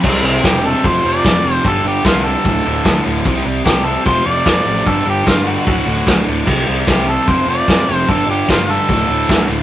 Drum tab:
CC |x-------|--------|--------|--------|
HH |--o-o-o-|o-o-o-o-|o-o-o-o-|o-o-o-o-|
SD |--o---o-|--o---o-|--o---o-|--o---o-|
BD |o-o-o-o-|o-o-o-o-|o-o-o-o-|o-o-o-o-|

CC |x-------|--------|
HH |--o-o-o-|o-o-o-o-|
SD |--o---o-|--o---o-|
BD |o-o-o-o-|o-o-o-o-|